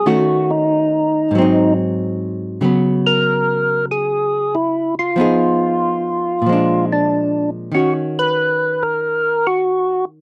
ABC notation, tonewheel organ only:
X:1
M:4/4
L:1/8
Q:"Swing" 1/4=94
K:D#phr
V:1 name="Tonewheel organ"
F D4 z3 | z A3 G2 E ^E- | ^E4- E =D2 z | F B2 A2 F2 z |]